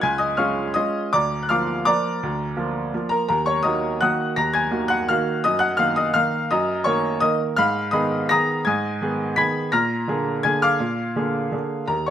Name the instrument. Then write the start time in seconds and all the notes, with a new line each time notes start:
upright piano
0.01 C#2 G#5 G#6
0.18 D#5 D#6
0.37 G#3 C#4 F4 F5 C#6 F6
0.74 G#3 C#4 F4 D#5 D#6
1.13 D2 D5 A#5 D6
1.43 F#6
1.49 F3 A#3 F4 F5 D6 F6
1.85 F3 A#3 F4 D5 A#5 D6
2.23 D2
2.57 F3 A#3 F4
2.94 F3 A#3 F4
3.09 A#4 A#5
3.28 D#2 A#4 A#5
3.46 C#5 C#6
3.63 D#3 A#3 F#4 D#5 A#5 D#6
4.01 D#3 A#3 F#4 F#5 D#6 F#6
4.36 D#2 A#5 A#6
4.54 G#5 G#6
4.71 D#3 A#3 F#4
4.88 F#5 F#6
5.09 D#3 A#3 F#4 F5 F6
5.44 F#2 D#5 D#6
5.59 F#5 F#6
5.77 D#3 A#3 A#4 F5 F6
5.96 D#5 D#6
6.14 D#3 A#3 A#4 F5 F6
6.51 F#2 D#5 A#5 D#6
6.84 D#3 A#3 A#4 C#5 C#6
7.20 D#3 A#3 A#4 D#5 D#6
7.56 G#2 F5 B5 F6
7.91 D#3 B3 G#4 D#5 B5 D#6
8.29 D#3 B3 G#4 A#5 D#6 A#6
8.65 G#2 G#5 D#6 G#6
9.01 D#3 B3 G#4
9.36 D#3 B3 G#4 B5 G#6 B6
9.72 A#2 A#5 F6 A#6
10.08 D3 A#3 G#4
10.43 D3 A#3 G#4 G#5 G#6
10.62 F5 D6 F6
10.80 A#2
11.16 D3 A#3 G#4
11.52 D3 A#3 G#4
11.87 D#2 A#4 A#5
12.06 C#6